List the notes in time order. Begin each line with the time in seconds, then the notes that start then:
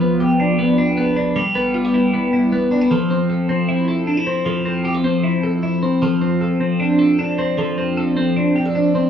Already playing: F3 G4
0.01 B3
0.20 G4
0.40 D4
0.59 B3
0.78 D4
0.97 B3
1.16 D4
1.36 G3
1.55 B3
1.74 F4
1.85 G4
1.94 E4
2.14 B3
2.33 E4
2.52 B3
2.71 D4
2.81 E4
2.91 F3 A4
3.10 C4
3.30 A4
3.49 C4
3.69 E4
3.88 A4
4.07 D4
4.17 E4
4.26 C4
4.46 F3 A4
4.65 C4
4.85 G4
4.94 A4
5.04 C4
5.24 E4
5.43 A4
5.63 E4
5.83 C4
6.02 F3 A4
6.22 C4
6.41 A4
6.60 C4
6.80 D4
6.99 A4
7.19 D4
7.38 C4
7.58 F3 A4
7.78 C4
7.97 A4
8.17 C4
8.36 D4
8.56 G4
8.66 A4
8.75 D4
8.95 C4